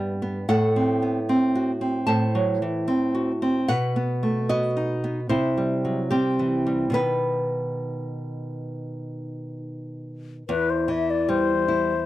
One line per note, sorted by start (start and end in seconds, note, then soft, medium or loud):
0.00 0.45 G2 soft
0.00 0.38 G3 soft
0.00 0.12 B3 medium
0.00 0.45 G4 medium
0.00 0.44 E5 medium
0.22 0.49 B3 soft
0.49 2.04 A2 medium
0.49 2.04 A4 medium
0.49 2.04 F#5 medium
0.76 1.19 C4 soft
1.02 1.29 B3 soft
1.29 1.71 C4 medium
1.55 1.97 F#4 soft
1.81 2.24 C4 soft
2.07 3.65 A2 soft
2.07 2.84 C5 medium
2.07 2.85 A5 medium
2.35 2.62 F#3 soft
2.62 2.89 E3 soft
2.88 3.31 C4 soft
3.15 3.58 F#4 soft
3.42 3.69 C4 soft
3.68 5.26 B2 medium
3.68 4.45 B4 medium
3.68 4.46 F#5 medium
3.96 4.39 B3 soft
4.23 4.49 A3 soft
4.49 4.92 B3 soft
4.49 5.26 F#4 medium
4.49 5.26 D#5 medium
4.77 5.19 D#4 soft
5.04 5.29 B3 soft
5.29 6.89 C3 medium
5.29 6.07 E4 medium
5.29 6.07 C5 medium
5.57 6.00 G3 soft
5.85 6.11 F#3 soft
6.11 6.55 G3 soft
6.11 6.92 C4 medium
6.11 6.92 G4 medium
6.39 6.84 E3 soft
6.67 6.95 G3 soft
6.90 10.42 B2 soft
6.90 10.43 D#3 soft
6.90 10.43 B3 soft
6.94 9.57 D#4 medium
6.94 9.57 B4 medium
10.48 12.05 E2 medium
10.48 10.71 B4 medium
10.70 10.93 C5 medium
10.88 11.52 E3 soft
10.88 11.12 E5 medium
11.10 11.31 D5 medium
11.29 11.92 G3 medium
11.29 12.06 C5 medium
11.68 12.06 E4 medium